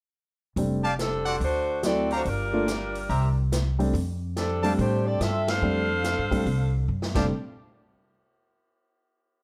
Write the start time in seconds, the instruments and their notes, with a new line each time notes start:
0.56 upright bass F1, grand piano G3 A3 C4 D4, open hi-hat
0.83 trumpet section G4 D5 F5 A5
0.99 saxophone section G3 C4 D4 A4, snare, closed hi-hat
1.26 trumpet section F#4 C5 D5 F#5, open hi-hat
1.40 upright bass D2, saxophone section A3 D4 F#4 C5, open hi-hat
1.83 grand piano F#3 A3 C4 E4, saxophone section C4 A4 D5, snare, closed hi-hat
1.87 saxophone section F#4
2.11 trumpet section G4 D5 F5 A#5, open hi-hat
2.15 saxophone section A3 D4 F#4 C5
2.25 upright bass G1, saxophone section F4 A#4, open hi-hat
2.30 saxophone section G3 D4
2.53 grand piano A3 A#3 D4 F4
2.68 snare, closed hi-hat
2.95 open hi-hat
3.09 upright bass C2, trumpet section G4 C5 E5 A#5, open hi-hat
3.52 snare, closed hi-hat
3.79 grand piano G3 A3 C4 D4, open hi-hat
3.93 upright bass F2, open hi-hat
4.36 saxophone section G3 C4 D4 A4, snare, closed hi-hat
4.63 grand piano G3 A3 C4 D4, trumpet section G4 D5 F5 A5, open hi-hat
4.78 upright bass A2, saxophone section A3 D4 G4 C5, open hi-hat
5.07 saxophone section C4 G4 A4 D5
5.20 upright bass G2, saxophone section C4 F4 A4 E5, snare, closed hi-hat
5.48 saxophone section D4 A4 C5 F5, snare, ride
5.62 upright bass F2, grand piano G3 A3 C4 D4
6.04 snare, closed hi-hat
6.18 upright bass G2
6.31 upright bass F#2, grand piano G3 A3 C4 D4, kick, open hi-hat
6.46 upright bass C2, open hi-hat
6.88 upright bass F#2
7.02 snare
7.15 upright bass F1, grand piano G3 A3 C4 D4, trumpet section G4 D5 F5 A5, kick, snare, crash